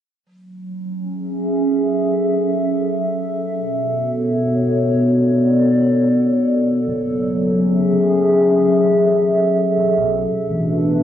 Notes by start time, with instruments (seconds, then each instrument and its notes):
0.25 ambient pad F#3
0.76 ambient pad C#4
1.07 ambient pad G#4 E5
1.54 ambient pad A4
3.56 ambient pad B2
3.82 ambient pad B3
3.92 ambient pad C#5
5.05 ambient pad D5
6.87 sub bass F#1, ambient pad F#3
7.26 ambient pad C#4
7.34 ambient pad E5
7.50 ambient pad G#4
7.91 sub bass F#1
8.84 sub bass E1
9.77 sub bass E1
9.98 sub bass B1
10.18 ambient pad B2
10.44 ambient pad D4 B4
10.49 sub bass A1
10.68 ambient pad B3